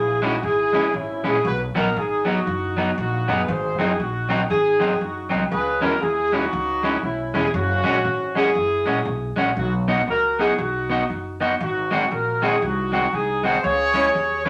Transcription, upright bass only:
Already playing: A#1
0.43 G#1
0.74 C#2
0.94 G#1
1.25 A#1
1.45 B1
1.77 A#1
1.96 G#1
2.47 F#1
2.98 A#1
3.29 F#1
3.48 G#1
3.80 F#1
4.00 A#1
4.50 G#1
5.01 F#1
5.32 C2
5.52 C#2
5.83 E2
6.02 D#2
6.53 C#2
7.03 B1
7.35 E1
7.54 F#1
7.85 A#1
8.05 G#1
8.55 F#1
8.86 A#1
9.05 B1
9.37 A#1
9.57 B1
10.07 C#2
10.58 B1
11.10 F#1
11.61 G#1
12.11 A#1
12.62 C2
13.13 C2
13.64 C#2
14.15 D#2

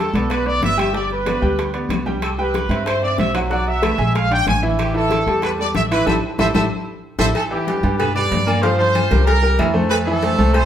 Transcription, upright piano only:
0.14 B3 B4 D5
0.30 B3 B4 D5
0.46 B3 B4 D5
0.77 G3 G4 G5
0.93 G3 G4 G5
1.26 B3 B4 D5
1.42 G3 G4 G5
1.74 B3 B4 D5
2.06 G3 G4 G5
2.38 G3 G4 G5
2.70 C4 C5 E5
2.86 C4 C5 E5
3.03 C4 C5 E5
3.34 F#3 F#4 F#5
3.50 F#3 F#4 F#5
3.82 A3 A4 B4
3.98 G#3 G#4 G#5
4.31 D4 D5 F5
4.62 E3 E4 E5
4.94 E3 E4 E5
5.27 G3 G4 A4
5.43 G3 G4 A4
5.59 G3 G4 A4
5.91 E3 E4 E5
6.06 E4 G4 A4
6.39 E4 G4 A4
6.55 E4 G4 A4
7.19 E4 G4 A4
7.50 E3 E4 E5
7.67 G3 G4 B4
7.83 G3 G4 B4
8.15 G3 G4 B4
8.46 A#3 A#4 D5
8.62 F3 F4 F5
8.78 F3 F4 F5
9.11 G3 G4 A#4
9.42 G3 G4 A#4
9.59 E3 E4 E5
9.74 A3 A4 C5
10.07 E3 E4 E5
10.23 A3 A4 C5
10.39 A3 A4 C5

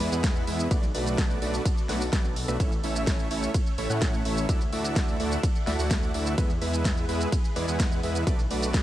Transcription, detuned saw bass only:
0.00 E2
0.12 E2
0.47 E2
0.71 B1
0.95 B1
1.42 B1
1.89 B1
2.48 B1
2.84 A1
3.31 A1
3.78 A1
3.90 A2
4.25 A1
4.49 D2
4.73 D2
5.20 D2
5.67 D2
5.79 D2
6.14 D2
6.62 E2
7.09 E2
7.56 E2
7.68 E2
8.03 E2
8.27 B1
8.51 B1

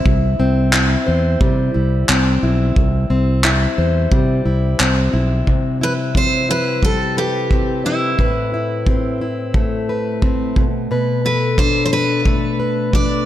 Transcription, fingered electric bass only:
0.06 C2
0.39 C2
1.08 E2
1.41 C3
1.75 C2
2.09 C2
2.43 B1
2.76 C2
3.10 C2
3.78 E2
4.12 C3
4.45 C2
4.80 C2
5.13 B1

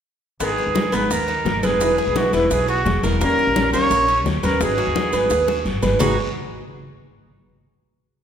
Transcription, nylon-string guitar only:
0.40 D#3 G#3 B3 D#4 A#4
0.75 G#3 B3 D#4 A#4
0.92 G#3 B3 D#4 A#4
1.10 muted nylon-string guitar stroke
1.63 G#3 B3 D#4 A#4
1.80 B2 E3 G#3 B3 E4
2.15 E3 G#3 B3 E4
2.33 E3 G#3 B3 E4
2.51 muted nylon-string guitar stroke
3.04 E3 G#3 B3 E4
3.21 D#3 G3 C#4 G4
3.55 D#3 G3 C#4 G4
3.73 G3 C#4 G4
3.91 muted nylon-string guitar stroke
4.43 G3 C#4 G4
4.61 D#3 F#3 B3 D#4 G#4
4.95 F#3 B3 D#4 G#4
5.13 F#3 B3 D#4 G#4
5.31 muted nylon-string guitar stroke
5.82 F#3 B3 D#4 G#4
6.00 G#2 D#3 F#3 B3 D#4 G#4

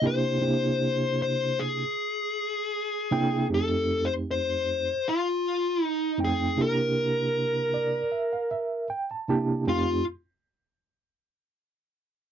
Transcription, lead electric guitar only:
0.07 C5
1.22 C5
1.60 G#4
3.54 A4
4.05 C5
4.31 C5
5.09 F4
5.84 D#4
6.25 G#4
6.62 A#4
9.69 F4

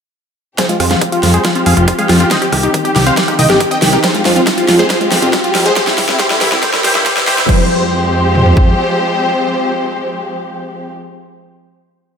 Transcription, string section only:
0.58 F3 G#3 C4 G4
2.31 D#3 G3
4.03 F3 G#3 G4
5.76 E3 G3 C4
7.49 F3 G#3 C4 G4

